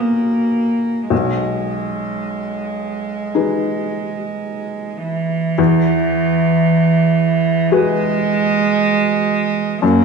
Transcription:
Already playing: B1 C#4 F#4 C#5
0.00 A#3
1.10 B1 G#3
3.35 D#4 G#4 B4
5.03 E3
5.58 E2
7.70 G#3 F#4 G#4 B4
9.81 F#2 A#3

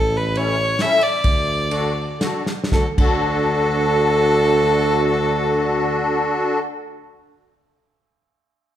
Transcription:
Already playing: A1 A4
0.17 B4
0.35 C#4 E4 A4 C#5, ride
0.79 C#4 E4 A4 E5, snare, ride
1.01 D5, ride
1.24 D2, kick, ride
1.71 D4 F#4 A4, ride
2.20 D4 F#4 A4, snare, ride
2.46 snare
2.64 snare
2.72 D2 D4 F#4 A4, kick, snare
2.98 D2 D4 F#4 A4, kick, crash

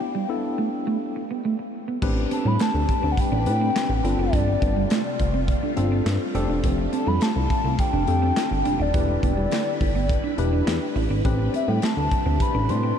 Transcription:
Already playing: B3 D4 E4 G4 G5
0.01 muted clean electric guitar stroke
0.15 G3
0.29 B3 D4 E4 A4
0.58 A3
0.87 A3
1.16 muted clean electric guitar stroke
1.31 B3
1.45 A3
1.59 muted clean electric guitar stroke
1.88 B3
2.02 A1 C3 G3 C4 D4 G4 B4, kick, crash
2.17 muted clean electric guitar stroke
2.31 C4 A5, closed hi-hat
2.45 A2 G3 B5
2.59 A3 A5, snare, clap, closed hi-hat
2.74 D2
2.89 muted clean electric guitar stroke, kick, closed hi-hat
3.03 D2 C4
3.12 F#5
3.17 G5, kick, closed hi-hat
3.32 A1 D4
3.46 A2 C4 D4 G4 B4, muted clean electric guitar stroke, closed hi-hat
3.61 C4
3.76 muted clean electric guitar stroke, snare, clap, closed hi-hat
3.89 A1
4.04 G1 G3 A3 C4 D4 F4 A4, closed hi-hat
4.18 F#1 D4 D5
4.33 G1, kick, closed hi-hat
4.48 muted clean electric guitar stroke
4.62 G1 C4, kick, closed hi-hat
4.76 G3
4.90 A3, snare, clap, closed hi-hat
5.19 F1, muted clean electric guitar stroke, kick, closed hi-hat
5.34 C4
5.48 kick, closed hi-hat
5.63 D4
5.77 G1 C4 D4 F4 A4, muted clean electric guitar stroke, closed hi-hat
5.92 C4
6.06 G2, muted clean electric guitar stroke, snare, clap, closed hi-hat
6.34 F1 D3 C4 D4 F4 G4 A4, closed hi-hat
6.49 E1 D4
6.64 F1, kick, closed hi-hat
6.78 muted clean electric guitar stroke
6.93 C4 A5, closed hi-hat
7.07 F2 G3 B5
7.21 A3 A5, snare, clap, closed hi-hat
7.36 C2
7.50 muted clean electric guitar stroke, kick, closed hi-hat
7.64 C2 C4
7.79 G5, kick, closed hi-hat
7.93 F1 D4
8.07 F2 C4 D4 G4 A4, muted clean electric guitar stroke, closed hi-hat
8.22 C4
8.36 muted clean electric guitar stroke, snare, clap, closed hi-hat
8.51 G1
8.65 E1 D4, closed hi-hat
8.80 D#1 D4 D5
8.94 E1 D4 E4 G4 B4, kick, closed hi-hat
9.09 muted clean electric guitar stroke
9.23 E1 B3, kick, closed hi-hat
9.37 G3
9.51 A3, snare, clap, closed hi-hat
9.81 G1, muted clean electric guitar stroke, kick, open hi-hat
9.95 B3
10.09 kick, closed hi-hat
10.24 D4
10.38 E1 D4 E4 G4 B4, muted clean electric guitar stroke, closed hi-hat
10.53 D4
10.67 E2, muted clean electric guitar stroke, snare, clap, closed hi-hat
10.96 A1 E4, open hi-hat
11.10 G#1 D4
11.25 A1 C3 G3 C4 D4 G4 B4, kick, closed hi-hat
11.39 muted clean electric guitar stroke
11.54 C4 E5, closed hi-hat
11.68 A2 G3 G5
11.82 A3 A5, snare, clap, closed hi-hat
11.97 D2
12.11 muted clean electric guitar stroke, kick, closed hi-hat
12.26 D2 C4
12.40 B5, kick, closed hi-hat
12.55 A1 D4
12.69 A2 C4 D4 G4 B4 C6, muted clean electric guitar stroke, closed hi-hat
12.83 C4

